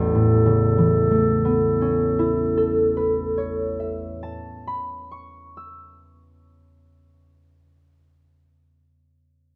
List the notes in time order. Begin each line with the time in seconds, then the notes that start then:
Already playing: A1 E2 C#4 E4 A4
0.15 A2
0.46 C#3
0.78 E3
1.11 A3
1.45 B3
1.81 C#4
2.19 E4
2.57 A4
2.97 B4
3.38 C#5
3.80 E5
4.23 A5
4.67 B5
5.11 C#6
5.57 E6